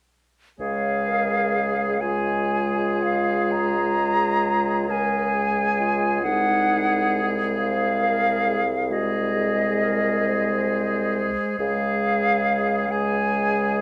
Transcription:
0.60 6.25 C#2 soft
0.60 1.97 G#3 soft
0.60 1.97 G#4 soft
0.60 1.10 C#5 soft
0.60 2.02 F5 soft
1.08 1.58 A#4 soft
1.56 2.03 G#4 soft
2.00 4.85 G#3 soft
2.00 4.90 F4 soft
2.00 4.84 G#4 soft
2.00 3.04 G#5 medium
3.03 3.53 F5 soft
3.51 4.92 A#5 medium
4.88 6.21 G#3 soft
4.88 6.21 G#4 soft
4.88 5.35 A#4 soft
4.88 6.22 G#5 soft
5.34 5.79 G#4 soft
5.80 6.26 F4 soft
6.22 11.33 C2 soft
6.22 8.61 G#3 soft
6.22 7.30 D#4 soft
6.22 8.62 G#4 soft
6.22 7.27 F#5 medium
7.56 8.05 C5 soft
7.56 8.94 F5 medium
8.03 8.47 A#4 soft
8.48 8.93 G#4 soft
8.91 11.55 G#3 soft
8.91 9.38 F#4 soft
8.91 11.55 G#4 soft
8.91 11.17 D#5 soft
9.37 9.84 G#4 soft
9.82 10.28 A#4 soft
10.28 11.58 C5 soft
11.58 13.81 C#2 soft
11.58 12.88 G#3 soft
11.58 12.87 G#4 soft
11.58 13.81 G#4 soft
11.58 12.93 F5 medium
12.89 13.81 G#3 soft
12.89 13.81 G#4 soft
12.89 13.81 G#5 medium

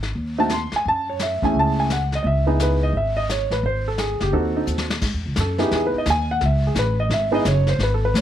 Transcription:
0.00 0.12 G#1 medium
0.00 snare soft
0.15 0.68 D#2 medium
0.15 brush sweep soft
0.38 0.49 A3 medium
0.38 0.49 C4 medium
0.38 0.49 D#4 medium
0.38 0.50 F#4 medium
0.38 0.51 A5 medium
0.49 0.73 C6 medium
0.49 snare medium
0.49 hi-hat pedal soft
0.72 muted upright bass stroke soft
0.72 snare soft
0.76 0.87 G#5 medium
0.85 1.38 F#2 medium
0.85 1.08 A5 medium
0.85 brush sweep soft
1.10 1.21 C#5 medium
1.19 1.43 E5 medium
1.19 snare medium
1.19 hi-hat pedal soft
1.42 1.54 E2 medium
1.42 1.87 A3 medium
1.42 1.87 C#4 medium
1.42 1.88 E4 medium
1.42 1.88 G#4 medium
1.42 1.56 G#5 medium
1.42 kick soft
1.54 2.20 C#2 medium
1.54 brush sweep soft
1.59 1.79 A5 medium
1.80 1.91 G#5 medium
1.90 2.13 F#5 medium
1.90 snare soft
1.90 hi-hat pedal medium
2.12 2.21 D#5 medium
2.12 snare soft
2.23 2.90 C#2 medium
2.23 2.25 D#5 medium
2.23 2.47 E5 medium
2.23 brush sweep soft
2.47 2.91 B3 medium
2.47 2.91 D#4 medium
2.47 2.91 E4 medium
2.47 2.92 G#4 medium
2.60 2.82 B4 medium
2.60 snare medium
2.60 hi-hat pedal medium
2.83 2.94 D#5 medium
2.93 3.46 G#1 medium
2.93 brush sweep soft
2.97 3.17 E5 medium
3.17 3.28 D#5 medium
3.29 3.51 C#5 medium
3.29 snare medium
3.29 hi-hat pedal medium
3.50 3.62 A1 medium
3.50 3.64 B4 medium
3.50 snare soft
3.63 4.16 G#1 medium
3.63 3.86 C5 medium
3.63 brush sweep soft
3.88 3.99 A4 medium
3.98 4.20 G#4 medium
3.98 snare medium
3.98 hi-hat pedal medium
4.20 4.32 F#1 medium
4.20 4.33 G4 medium
4.20 snare soft
4.32 4.65 D#2 medium
4.32 4.85 C4 medium
4.32 4.55 D#4 medium
4.32 4.85 F#4 medium
4.32 4.85 A4 medium
4.32 brush sweep soft
4.57 4.63 D#4 medium
4.67 4.99 D#2 medium
4.67 hi-hat pedal medium
4.78 snare medium
4.90 snare medium
5.01 5.15 G#2 medium
5.01 brush sweep soft
5.01 kick medium
5.01 snare soft
5.01 crash medium
5.14 5.25 E2 medium
5.26 5.36 C#2 medium
5.36 5.70 F#2 medium
5.36 snare medium
5.36 hi-hat pedal soft
5.40 5.60 A4 medium
5.58 6.03 B3 medium
5.58 6.04 D#4 medium
5.58 6.03 E4 medium
5.58 5.72 G4 medium
5.58 5.73 G#4 medium
5.58 snare soft
5.71 5.92 E2 medium
5.71 5.84 G#4 medium
5.71 brush sweep soft
5.71 snare soft
5.87 5.96 B4 medium
5.94 muted upright bass stroke soft
5.98 6.08 D#5 medium
6.06 6.40 D#2 medium
6.06 snare medium
6.06 hi-hat pedal medium
6.10 6.30 G#5 loud
6.31 6.42 F#5 medium
6.41 6.74 C#2 medium
6.41 brush sweep soft
6.41 snare soft
6.46 6.65 E5 medium
6.67 6.77 G#4 medium
6.75 7.09 A1 medium
6.75 snare medium
6.75 hi-hat pedal medium
6.79 6.99 B4 medium
7.00 7.11 D#5 medium
7.09 7.43 G#1 medium
7.09 brush sweep soft
7.09 snare soft
7.14 7.33 E5 medium
7.32 7.43 B3 medium
7.32 7.44 D#4 medium
7.32 7.44 E4 medium
7.32 7.44 G#4 medium
7.32 7.46 D#5 medium
7.45 7.78 F#1 medium
7.45 7.68 C#5 medium
7.45 snare medium
7.45 hi-hat pedal medium
7.67 7.80 C5 medium
7.67 snare soft
7.79 8.13 G#1 medium
7.79 brush sweep soft
7.79 snare soft
7.83 7.93 B4 medium
7.94 8.04 A4 medium
8.05 8.15 B4 medium
8.14 8.21 A1 loud
8.14 8.21 C#5 medium
8.14 snare medium
8.14 hi-hat pedal soft

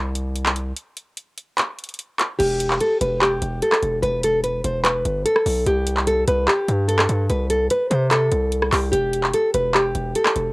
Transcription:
0.00 0.73 C2 loud
0.15 closed hi-hat medium
0.36 closed hi-hat medium
0.46 clap loud
0.56 closed hi-hat medium
0.77 closed hi-hat medium
0.97 closed hi-hat medium
1.17 closed hi-hat medium
1.38 closed hi-hat medium
1.58 clap loud
1.58 closed hi-hat medium
1.79 closed hi-hat medium
1.84 closed hi-hat medium
1.89 closed hi-hat medium
1.94 closed hi-hat medium
1.99 closed hi-hat medium
2.19 clap medium
2.19 closed hi-hat medium
2.39 2.79 E1 loud
2.39 2.78 G4 loud
2.39 closed hi-hat medium
2.39 crash loud
2.60 closed hi-hat medium
2.70 clap medium
2.80 2.99 A4 medium
2.80 closed hi-hat medium
3.01 3.40 E1 loud
3.01 3.19 B4 medium
3.01 closed hi-hat medium
3.21 3.60 G4 medium
3.21 clap loud
3.42 3.61 E1 loud
3.42 closed hi-hat medium
3.62 4.01 A4 medium
3.62 closed hi-hat medium
3.72 cross-stick loud
3.72 clap loud
3.83 4.02 E1 loud
3.83 closed hi-hat medium
4.03 4.62 E1 loud
4.03 4.21 B4 loud
4.03 closed hi-hat medium
4.23 4.42 A4 medium
4.23 closed hi-hat medium
4.44 4.62 B4 medium
4.44 closed hi-hat medium
4.64 5.03 E1 loud
4.64 4.82 C5 medium
4.64 closed hi-hat medium
4.84 5.23 B4 medium
4.84 clap loud
4.84 closed hi-hat medium
5.05 5.25 G1 loud
5.05 closed hi-hat medium
5.26 5.64 A4 medium
5.26 closed hi-hat medium
5.36 cross-stick loud
5.46 5.66 B1 loud
5.46 open hi-hat medium
5.66 6.25 C2 loud
5.66 6.05 G4 loud
5.66 closed hi-hat medium
5.87 closed hi-hat medium
5.97 clap medium
6.07 6.25 A4 medium
6.07 closed hi-hat medium
6.28 6.47 C2 loud
6.28 6.46 B4 medium
6.28 closed hi-hat medium
6.48 6.86 G4 medium
6.48 clap loud
6.68 7.08 G2 loud
6.68 closed hi-hat medium
6.88 7.27 A4 medium
6.88 closed hi-hat medium
6.99 cross-stick loud
6.99 clap loud
7.09 7.29 G2 loud
7.09 closed hi-hat medium
7.30 7.69 C2 loud
7.30 7.48 B4 loud
7.30 closed hi-hat medium
7.50 7.68 A4 medium
7.50 closed hi-hat medium
7.70 7.89 B4 loud
7.70 closed hi-hat medium
7.90 8.30 C3 loud
7.90 8.09 C5 medium
7.90 closed hi-hat medium
8.11 8.69 A4 medium
8.11 clap loud
8.11 closed hi-hat medium
8.32 8.71 C2 loud
8.32 closed hi-hat medium
8.52 closed hi-hat medium
8.62 cross-stick loud
8.72 8.92 C2 loud
8.72 8.90 G4 medium
8.72 clap medium
8.72 open hi-hat medium
8.92 9.32 E1 loud
8.92 9.31 G4 loud
8.92 closed hi-hat medium
9.13 closed hi-hat medium
9.24 clap medium
9.34 9.52 A4 medium
9.34 closed hi-hat medium
9.54 9.93 E1 loud
9.54 9.72 B4 medium
9.54 closed hi-hat medium
9.74 10.13 G4 medium
9.74 clap loud
9.95 10.15 E1 loud
9.95 closed hi-hat medium
10.15 10.53 A4 medium
10.15 closed hi-hat medium
10.26 cross-stick loud
10.26 clap loud
10.36 10.53 E1 loud
10.36 closed hi-hat medium

